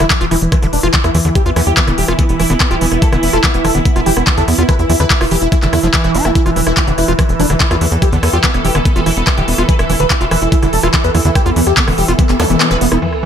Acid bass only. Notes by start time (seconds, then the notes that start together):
0.00 D3
0.21 F4
0.31 E3
0.52 E3
0.62 D3
0.83 F4
0.94 E3
1.15 E3
1.25 D3
1.46 F4
1.56 E3
1.77 E3
1.88 D3
2.08 F4
2.19 E3
2.40 E3
2.50 D3
2.71 F4
2.81 E3
3.02 E3
3.13 D3
3.33 F4
3.44 E3
3.65 E3
3.75 D3
3.96 F4
4.06 E3
4.27 E3
4.38 D3
4.58 F4
4.69 E3
4.90 E3
5.00 D3
5.21 F4
5.31 E3
5.52 E3
5.63 D3
5.73 D3
5.83 F3
5.94 E3
6.15 E4
6.25 G3
6.46 F4
6.56 E3
6.77 E3
6.88 D3
7.08 F4
7.19 E3
7.40 E3
7.50 D3
7.71 F4
7.81 E3
8.02 E3
8.13 D3
8.33 F4
8.44 E3
8.65 E3
8.75 D3
8.96 F4
9.06 E3
9.27 E3
9.38 D3
9.58 F4
9.69 E3
9.90 E3
10.00 D3
10.21 F4
10.31 E3
10.52 E3
10.62 D3
10.83 F4
10.94 E3
11.15 E3
11.25 D3
11.46 F4
11.56 E3
11.77 E3
11.88 D3
12.08 F4
12.19 E3
12.40 B3
12.50 E3
12.71 F3
12.81 B3
12.92 E4
13.02 E3